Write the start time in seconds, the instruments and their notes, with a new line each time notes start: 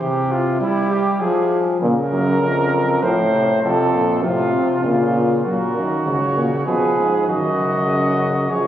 0.01 trombone C3, trumpet G4
0.32 trumpet F4
0.61 trombone G3, trumpet E4
0.91 trumpet G4
1.20 trombone F3, trumpet G#4
1.81 euphonium A#2, trombone C#3, trumpet A#4
2.12 euphonium F#2
2.41 euphonium F2
3.01 euphonium A2, trombone F3, trumpet C5
3.32 trombone C3
3.62 euphonium F2, trombone C3, trumpet A4
3.93 trombone A#2
4.22 trombone A2, euphonium C3, trumpet F4
4.53 trombone C3
4.84 euphonium A#2, trombone C#3, trumpet F4
5.44 euphonium A#2, trombone F#3, trumpet F#4 A#4
5.75 euphonium F#2, trombone D#3
6.05 euphonium G#2, trombone C#3, trumpet C#5
6.36 euphonium A#2
6.66 euphonium B2, trombone F3, trumpet G#4 B4
6.97 euphonium G#2
7.27 euphonium F#2, trombone D#3, trumpet F#4 D#5
7.58 trombone C#3
8.50 euphonium C#2, trombone F3, trumpet G#4 C#5